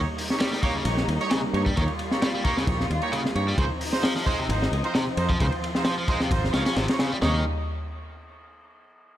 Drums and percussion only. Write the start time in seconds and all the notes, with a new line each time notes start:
0.18 open hi-hat
0.30 snare
0.40 snare, ride
0.53 snare
0.63 kick, ride
0.85 ride
0.97 snare
1.08 ride
1.21 ride
1.31 snare, ride
1.54 ride
1.66 kick
1.77 kick, ride
1.88 ride
1.99 ride
2.11 snare
2.22 snare, ride
2.44 kick, ride
2.57 snare
2.67 kick, ride
2.80 snare
2.91 ride
3.02 ride
3.13 ride
3.25 snare
3.35 ride
3.58 kick, ride
3.81 open hi-hat
3.93 snare
4.04 snare, ride
4.16 snare
4.26 kick, ride
4.50 ride
4.62 snare
4.73 ride
4.84 ride
4.95 snare, ride
5.17 ride
5.30 kick
5.40 kick, ride
5.52 ride
5.64 ride
5.75 snare
5.85 snare, ride
6.08 kick, ride
6.20 snare
6.31 kick, ride
6.44 snare
6.54 snare, ride
6.66 snare, ride
6.76 snare, ride
6.88 snare, ride
6.99 snare, ride
7.22 snare, floor tom